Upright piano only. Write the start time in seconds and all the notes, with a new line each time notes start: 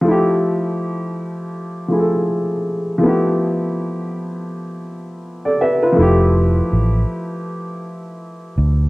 0.02 F3 A3
0.08 E4 G4
1.88 F3 A3 E4
1.93 G#4
1.99 A4
2.98 F3 A3
3.03 B3 E4
3.08 G4
5.45 A4 D5
5.61 B4 E5
5.82 F4 B4
5.92 F3 A3
5.99 E4 G4